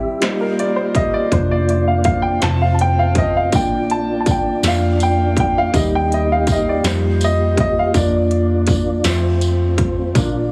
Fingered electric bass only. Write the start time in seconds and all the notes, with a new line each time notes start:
Already playing: C2
0.21 F1
1.31 F1
2.42 F1
3.53 A#1
4.63 F2
5.73 D#2
6.84 F2
7.94 F2
9.04 F2
10.15 A#1